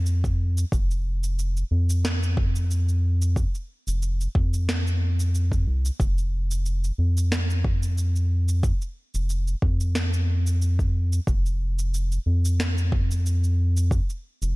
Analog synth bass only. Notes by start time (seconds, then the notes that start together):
Already playing: F2
0.72 F1
1.71 F2
3.87 F1
4.35 F2
5.67 C2
6.00 F1
6.98 F2
9.14 F1
9.62 F2
11.27 F1
12.26 F2
14.42 F1